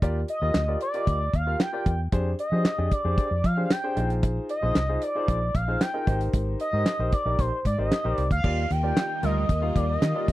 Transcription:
0.02 D#2 F4 G4 A#4 D5, kick, closed hi-hat
0.28 D#5, closed hi-hat
0.41 D#2 F4 G4 A#4 D#5
0.54 D2, snare, clap, closed hi-hat
0.68 F4 G4 A#4 D5
0.81 D5, closed hi-hat
0.94 F4 G4 A#4 D#5, closed hi-hat
1.07 D2, kick, closed hi-hat
1.33 D#2 F5, kick, closed hi-hat
1.47 F4 G4 A#4 F5
1.60 G5, snare, clap, closed hi-hat
1.73 F4 G4 A#4 D5
1.86 E2, kick, closed hi-hat
2.12 F2 D4 G4 G#4 C5, kick, closed hi-hat
2.39 D#5, closed hi-hat
2.52 F3 D4 G4 G#4 C5
2.65 snare, clap, closed hi-hat
2.78 F2 D4 G4 G#4 D5
2.91 D5, kick, closed hi-hat
3.04 F2 D4 G4 G#4 C5
3.18 kick, closed hi-hat
3.31 F2
3.44 F3 F5, kick, closed hi-hat
3.57 D4 G4 G#4 C5
3.70 G5, snare, clap, closed hi-hat
3.83 D4 G4 G#4 C5
3.96 A#1 D#4 F4 G#4 C5, closed hi-hat
4.10 closed hi-hat
4.23 kick, closed hi-hat
4.49 D#5, closed hi-hat
4.62 A#1 D#4 F4 G#4 C5
4.75 C2, snare, clap, closed hi-hat
4.89 D#4 F4 G#4 C5
5.02 D5, closed hi-hat
5.15 D#4 F4 G#4 C5
5.28 A#1, kick, closed hi-hat
5.55 A#1 F5, kick, closed hi-hat
5.68 D#4 F4 G#4 C5
5.81 G5, snare, clap, closed hi-hat
5.94 D#4 F4 G#4 A#4
6.07 G#1 D#4 G4 A#4 C5, kick, closed hi-hat
6.21 closed hi-hat
6.33 G#1, kick, closed hi-hat
6.60 D#5, closed hi-hat
6.73 G#2 D#4 G4 A#4 C5
6.86 snare, clap, closed hi-hat
6.99 A#1 D#4 G4 A#4 C5
7.12 D5, kick, closed hi-hat
7.26 A#1 D#4 G4 A#4 D5
7.39 A#1 C5, kick, closed hi-hat
7.65 G#2 D5, kick, closed hi-hat
7.78 G#1 D#4 G4 A#4 C5 D#5
7.92 snare, clap, closed hi-hat
8.04 A#1 D#4 G4 A#4 C5
8.15 C2 D5, closed hi-hat
8.31 D2 F5, kick, closed hi-hat
8.44 D#2 D#3 G3 A#3 D#4 F4 G4 A#4 D5, kick, crash
8.71 D#2 G5, closed hi-hat
8.83 F4 G4 A#4 D5
8.97 snare, clap, closed hi-hat
9.22 D2 G3 F4 G4 A#4 D#5, closed hi-hat
9.49 D#2, kick, closed hi-hat
9.62 F4 G4 A#4 F5
9.76 D#2 D5, kick, closed hi-hat
9.89 D#5
10.02 D#3, snare, clap, closed hi-hat
10.15 F4 G4 A#4 D5
10.28 D#2, kick, closed hi-hat

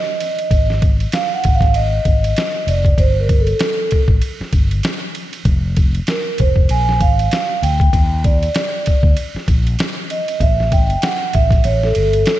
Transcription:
Already playing: D#5
0.20 ride
0.39 ride
0.51 G#1, kick, ride
0.70 snare
0.82 kick, ride
1.00 ride
1.12 F5, snare, hi-hat pedal, ride
1.34 F#5
1.44 G#1, kick, ride
1.55 F5
1.61 kick, snare, ride
1.74 D#5, ride
2.05 G#1, kick, ride
2.24 ride
2.36 snare, hi-hat pedal, ride
2.67 F1 D5, ride
2.85 kick, ride
2.98 G1 C5, kick, ride
3.20 A#4
3.29 kick, ride
3.40 A4
3.47 ride
3.59 snare, hi-hat pedal, ride
3.91 kick, ride
4.08 A1, kick
4.22 ride
4.41 muted fretless electric bass stroke, snare
4.53 G1, kick, ride
4.71 ride
4.83 snare, hi-hat pedal, ride
5.15 ride
5.33 ride
5.45 F1, kick, ride
5.77 kick, ride
5.95 ride
6.07 A#4, snare, hi-hat pedal, ride
6.38 F1 C5, kick, ride
6.56 kick
6.69 A#1 G#5, ride
6.89 snare
7.00 G#1 F5, kick, ride
7.19 ride
7.31 snare, hi-hat pedal, ride
7.62 D2 G5, ride
7.80 kick, ride
7.93 D#2, kick, ride
8.24 D5, kick, ride
8.43 ride
8.55 snare, hi-hat pedal, ride
8.86 kick, ride
9.03 D2, kick
9.17 ride
9.35 muted fretless electric bass stroke, snare
9.48 A#1, kick, ride
9.67 ride
9.79 snare, hi-hat pedal, ride
10.10 D#5, ride
10.28 ride
10.40 A1 E5, kick, ride
10.60 snare
10.72 G5, kick, ride
10.90 ride
11.02 F#5, snare, hi-hat pedal, ride
11.33 A1 E5, kick, ride
11.51 kick, snare, ride
11.64 A1 C#5, ride
11.83 A4, snare
11.95 G1, ride
12.13 ride
12.26 snare, hi-hat pedal, ride

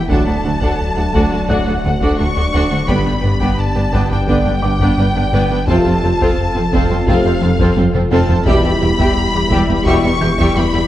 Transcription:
Already playing: E1 E5 E6 B6
0.08 D1 D2 D3 F#3 A3 D4 F#4 A4 D5 F#5 A5, taiko
0.26 D2 D4 F#4 A4 F#5
0.43 D2 D4 F#4 A4 F#5
0.61 D2 D4 F#4 A4 F#5, taiko
0.80 D2
0.96 D2 D4 F#4 A4 F#5
1.13 D2 D4 F#4 A4 F#5, taiko
1.32 D2 D4 F#4 A4 F#5
1.48 D2 D3 F#3 A3 D4 F#4 A4 F#5 F#6, taiko
1.66 D2 D4 F#4 A4 F#5
1.84 D2 D3 D4 F#4 A4 F#5
2.01 D2 D4 F#4 A4 F#5, taiko
2.18 D2 D4 F#4 A4 F#5 C#6
2.36 D2 D4 F#4 A4 F#5
2.54 D2 D4 F#4 A4 F#5
2.71 D2 D3 D4 F#4 A4 F#5
2.88 G1 G2 D3 G3 B3 D4 B4 G5 B5, taiko
3.05 G2 B3 D4 B4 G5
3.21 G1 G2 B3 D4 B4 G5
3.40 G2 B3 D4 B4 G5, taiko
3.58 G2 A5
3.75 G2 B3 D4 B4 G5
3.92 G1 G2 B3 D4 B4 G5, taiko
4.10 G2 B3 D4 B4 G5
4.27 G1 G2 D3 G3 B3 D4 B4 G5, taiko
4.44 G2 B3 D4 B4 G5
4.62 G1 G2 G3 B3 D4 B4 G5 D6
4.80 G2 B3 D4 B4 G5, taiko
4.97 G1 G2 B3 D4 B4 G5
5.15 G2 B3 D4 B4 G5
5.32 G1 G2 B3 D4 B4 G5
5.50 G2 G3 B3 D4 B4 G5
5.67 F1 F2 C3 F3 A3 C4 F4 A4 C5 A5, taiko
5.85 F2 C4 F4 A4 C5
6.02 F1 F2 C4 F4 A4 C5
6.19 F2 C4 F4 A4 C5, taiko
6.37 F2
6.55 F2 C4 F4 A4 C5
6.72 F1 F2 C4 F4 A4 C5, taiko
6.89 F2 C4 F4 A4 C5
7.06 F1 F2 C3 F3 A3 C4 F4 A4 C5 F5, taiko
7.24 F2 C4 F4 A4 C5
7.41 F1 F2 F3 C4 F4 A4 C5
7.59 F2 C4 F4 A4 C5, taiko
7.76 F1 F2 C4 F4 A4 C5, taiko high
7.94 F2 C4 F4 A4 C5, taiko mid
8.11 F1 F2 C4 F4 A4 C5 A5, taiko mid
8.28 F2 F3 C4 F4 A4 C5, taiko low
8.46 E1 E2 B2 G3 B3 E4 G4 E5 B5, taiko
8.63 E2 G3 G4 E5
8.81 E1 E2 G3 G4 E5
8.98 E2 G3 G4 E5, taiko
9.16 E2
9.32 E2 G3 G4 E5
9.50 E1 E2 G3 G4 E5, taiko
9.68 E2 G3 G4 E5
9.85 E1 E2 B2 G3 E4 G4 E5 C#6, taiko
10.03 E2 G3 G4 E5
10.21 E1 E2 E3 G3 G4 E5 G6
10.38 E2 G3 G4 E5, taiko
10.55 E1 E2 G3 G4 E5 B5
10.73 E2 G3 G4 E5

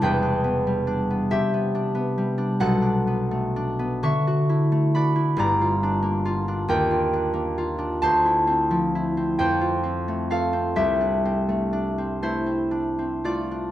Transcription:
Already playing: G3 D4 E4 G4 D5 E5 A5 A#5
0.01 E1 E2 B4 G5
0.22 D4
0.44 B3
0.67 G3
0.87 D4
1.10 B3
1.31 C3 G4 E5
1.54 B3
1.75 D4
1.95 B3
2.18 G3
2.38 D4
2.60 B1 B2 A4 F#5
2.82 D4
3.07 B3
3.31 A3
3.56 D4
3.79 B3
4.03 D3 E5 C#6
4.27 F#4
4.49 E4
4.72 A3
4.95 F#4 D5 B5
5.16 E4
5.36 G1 G2 D5 A#5
5.61 F4
5.83 D4
6.02 A#3
6.25 F4
6.48 D4
6.68 D#2 A#4 G5
6.91 F4
7.13 D4
7.33 A#3
7.58 F4
7.78 D4
8.02 D2 C5 A5
8.25 E4
8.47 C4
8.71 F3
8.95 E4
9.17 C4
9.39 F2 C5 G5
9.61 F4
9.83 C4
10.08 A3
10.30 F4 A4 F5
10.53 C4
10.76 C2 G4 E5
11.01 D4
11.25 C4
11.49 A3
11.73 D4
11.98 C4
12.22 A3 E4 C5
12.46 C4
12.71 D4
12.99 C4
13.24 A3 F4 D5
13.51 D4

